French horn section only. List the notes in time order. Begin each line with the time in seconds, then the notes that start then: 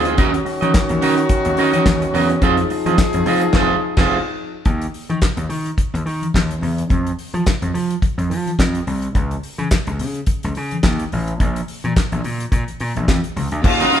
Already playing: F3 D#4 G#4
0.20 D#3 C#4 F#4
2.42 F3 D#4 G#4
13.63 D#3 F#3 C#4